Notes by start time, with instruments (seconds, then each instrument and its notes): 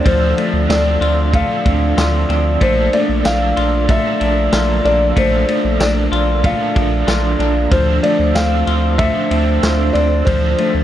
Already playing: french horn section D3 D4 F4, clean electric guitar A3 C4 F4
0.05 sub bass D2, overdriven electric guitar D3 F3 C4 D4 A4, clean electric guitar F3, felt piano C5, french horn section D5, kick, ride
0.38 clean electric guitar A3, ride
0.53 sub bass D2
0.69 sub bass D2, overdriven electric guitar F3 C4 D4 A4, clean electric guitar C4, felt piano D5, snare, ride, tambourine
1.01 sub bass D2, clean electric guitar F4, ride
1.32 overdriven electric guitar D3 F3 C4, clean electric guitar A3, felt piano F5, kick, ride
1.36 overdriven electric guitar D4 A4
1.65 sub bass D2, clean electric guitar C4, kick, ride
1.97 sub bass D2, clean electric guitar F4, snare, ride, tambourine
2.29 sub bass D2, clean electric guitar C4, ride
2.61 sub bass A#1, overdriven electric guitar A#2 D3 F3 A#3 D4 A4, french horn section A#2 A4, clean electric guitar A3, felt piano C5, kick, ride
2.93 clean electric guitar A3, felt piano D5, ride
3.09 sub bass A#1
3.24 sub bass A#1, overdriven electric guitar F3 A#3 D4 A4, clean electric guitar D4, felt piano F5, snare, ride, tambourine
3.57 sub bass A#1, clean electric guitar F4, ride
3.88 overdriven electric guitar A#2 D3 F3 A#3, clean electric guitar A3, felt piano E5, kick, ride
3.92 overdriven electric guitar D4 A4
4.20 sub bass A#1, clean electric guitar D4, ride
4.52 sub bass A#1, clean electric guitar F4, snare, ride, tambourine
4.84 sub bass A#1, clean electric guitar D4, felt piano D5, ride
5.16 sub bass A#1, overdriven electric guitar A#2 D3 F3 A#3, clean electric guitar A3, felt piano C5, kick, ride
5.20 overdriven electric guitar D4 A4
5.48 clean electric guitar A3, ride
5.64 sub bass A#1
5.80 sub bass A#1, clean electric guitar D4, felt piano D5, snare, ride, tambourine
6.12 sub bass A#1, clean electric guitar F4, ride
6.43 overdriven electric guitar A#2 D3 F3 A#3, clean electric guitar A3, felt piano F5, kick, ride
6.47 overdriven electric guitar D4 A4
6.75 sub bass A#1, clean electric guitar D4, kick, ride
7.07 sub bass A#1, clean electric guitar F4, snare, ride, tambourine
7.39 sub bass A#1, clean electric guitar D4, ride
7.71 sub bass D2, overdriven electric guitar D3 F3 C4 D4 A4, french horn section D3 D4 F4 C5, clean electric guitar F3, felt piano C5, kick, ride
8.03 clean electric guitar A3, felt piano D5, ride
8.19 sub bass D2
8.35 sub bass D2, overdriven electric guitar F3 C4 D4 A4, clean electric guitar C4, felt piano F5, snare, ride, tambourine
8.67 sub bass D2, clean electric guitar F4, ride
8.98 overdriven electric guitar D3 F3 C4 D4 A4, clean electric guitar A3, felt piano E5, kick, ride
9.30 sub bass D2, clean electric guitar C4, overdriven electric guitar C4 D4 A4, ride
9.63 sub bass D2, clean electric guitar F4, snare, ride, tambourine
9.93 sub bass D2, clean electric guitar C4, felt piano D5, ride
10.25 sub bass D2, overdriven electric guitar D3 F3 C4 D4 A4, clean electric guitar F3, felt piano C5, kick, ride
10.58 clean electric guitar A3, ride
10.74 sub bass D2